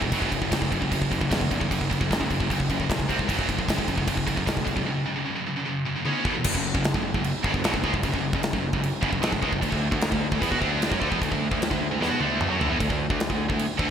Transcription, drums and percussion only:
0.02 kick medium
0.12 kick medium
0.12 crash medium
0.22 kick medium
0.32 kick medium
0.32 crash medium
0.42 kick medium
0.52 kick medium
0.52 snare loud
0.52 crash medium
0.62 kick medium
0.72 kick medium
0.72 crash medium
0.82 kick medium
0.92 kick medium
0.92 crash medium
1.02 kick medium
1.12 kick medium
1.12 crash medium
1.21 kick medium
1.31 kick medium
1.31 snare loud
1.31 crash medium
1.41 kick medium
1.51 kick medium
1.51 crash medium
1.61 kick medium
1.71 kick medium
1.71 crash medium
1.81 kick medium
1.91 kick medium
1.91 crash medium
2.01 kick medium
2.11 kick medium
2.11 snare loud
2.11 crash medium
2.21 kick medium
2.31 kick medium
2.31 crash medium
2.40 kick medium
2.50 kick medium
2.50 crash medium
2.60 kick medium
2.70 kick medium
2.70 crash medium
2.80 kick medium
2.90 kick medium
2.90 snare loud
2.90 crash medium
3.00 kick medium
3.09 kick medium
3.09 crash medium
3.19 kick medium
3.29 kick medium
3.29 crash medium
3.39 kick medium
3.49 kick medium
3.49 crash medium
3.59 kick medium
3.69 kick medium
3.69 snare loud
3.69 crash medium
3.78 kick medium
3.88 kick medium
3.88 crash medium
3.98 kick medium
4.08 kick medium
4.08 crash medium
4.17 kick medium
4.27 kick medium
4.27 crash medium
4.37 kick medium
4.47 kick medium
4.47 snare loud
4.47 crash medium
4.57 kick medium
4.67 kick medium
4.67 crash medium
4.77 kick medium
6.05 high tom medium
6.25 kick medium
6.44 kick medium
6.44 crash loud
6.44 crash medium
6.55 kick medium
6.75 kick loud
6.84 snare loud
6.84 crash medium
6.94 kick medium
7.14 kick medium
7.24 crash medium
7.44 kick loud
7.54 kick medium
7.64 snare loud
7.64 crash medium
7.74 kick loud
7.84 kick medium
7.94 kick medium
8.03 kick medium
8.03 crash medium
8.14 kick medium
8.33 kick loud
8.43 snare loud
8.43 crash medium
8.53 kick medium
8.73 kick medium
8.83 crash medium
9.03 kick loud
9.13 kick medium
9.23 snare loud
9.23 crash medium
9.32 kick medium
9.43 kick medium
9.53 kick medium
9.62 kick medium
9.62 crash medium
9.72 kick medium
9.92 kick loud
10.01 snare loud
10.01 crash medium
10.12 kick loud
10.32 kick medium
10.42 kick loud
10.42 crash medium
10.52 kick medium
10.62 kick medium
10.82 snare loud
10.82 crash medium
10.92 kick loud
11.02 kick medium
11.12 kick medium
11.22 kick medium
11.22 crash medium
11.32 kick medium
11.52 kick medium
11.62 snare loud
11.62 crash medium
11.71 kick medium
12.02 snare medium
12.21 high tom medium
12.41 mid tom loud
12.61 floor tom loud
12.80 kick loud
12.80 crash medium
12.90 kick medium
13.10 kick loud
13.20 snare loud
13.20 crash medium
13.30 kick medium
13.50 kick loud
13.59 crash medium
13.79 kick loud

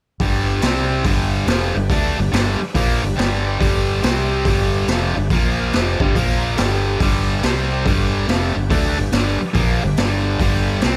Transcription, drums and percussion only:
0.20 kick loud
0.20 open hi-hat soft
0.62 snare loud
0.62 open hi-hat medium
1.05 kick loud
1.05 open hi-hat medium
1.47 snare loud
1.47 open hi-hat medium
1.90 kick loud
1.90 open hi-hat medium
2.33 snare loud
2.33 open hi-hat soft
2.75 kick loud
2.75 open hi-hat medium
3.19 snare loud
3.19 open hi-hat medium
3.61 kick medium
3.61 open hi-hat medium
4.03 snare loud
4.03 open hi-hat soft
4.45 kick loud
4.45 open hi-hat medium
4.88 snare loud
4.88 open hi-hat medium
5.30 kick loud
5.30 open hi-hat medium
5.73 snare medium
5.73 open hi-hat soft
6.00 kick loud
6.15 kick medium
6.15 open hi-hat medium
6.57 snare loud
6.57 open hi-hat medium
7.00 kick loud
7.00 open hi-hat soft
7.43 snare medium
7.43 open hi-hat soft
7.86 kick loud
7.86 open hi-hat medium
8.29 snare loud
8.29 open hi-hat medium
8.70 kick loud
8.70 open hi-hat medium
9.12 snare loud
9.12 open hi-hat medium
9.55 kick loud
9.55 open hi-hat soft
9.97 snare loud
9.97 open hi-hat medium
10.40 kick loud
10.40 open hi-hat medium
10.81 snare loud
10.81 open hi-hat medium

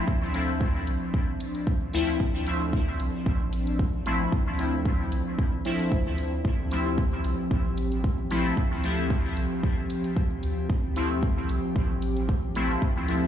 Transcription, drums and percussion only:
0.08 kick loud
0.34 closed hi-hat medium
0.61 kick loud
0.87 closed hi-hat medium
1.14 kick loud
1.40 closed hi-hat medium
1.55 closed hi-hat soft
1.67 kick loud
1.93 closed hi-hat medium
2.20 kick loud
2.47 closed hi-hat medium
2.73 kick loud
3.00 closed hi-hat medium
3.26 kick loud
3.53 closed hi-hat medium
3.67 closed hi-hat soft
3.79 kick loud
4.06 closed hi-hat medium
4.32 kick loud
4.59 closed hi-hat medium
4.85 kick loud
5.12 closed hi-hat medium
5.39 kick loud
5.65 closed hi-hat medium
5.79 closed hi-hat soft
5.92 kick loud
6.18 closed hi-hat medium
6.45 kick loud
6.71 closed hi-hat medium
6.98 kick loud
7.24 closed hi-hat medium
7.51 kick loud
7.78 closed hi-hat medium
7.92 closed hi-hat soft
8.04 kick loud
8.31 closed hi-hat medium
8.57 kick loud
8.84 closed hi-hat medium
9.10 kick loud
9.37 closed hi-hat medium
9.63 kick loud
9.90 closed hi-hat medium
10.04 closed hi-hat soft
10.16 kick loud
10.43 closed hi-hat medium
10.70 kick loud
10.96 closed hi-hat medium
11.23 kick loud
11.49 closed hi-hat medium
11.76 kick loud
12.02 closed hi-hat medium
12.17 closed hi-hat soft
12.29 kick loud
12.55 closed hi-hat medium
12.82 kick loud
13.08 closed hi-hat medium

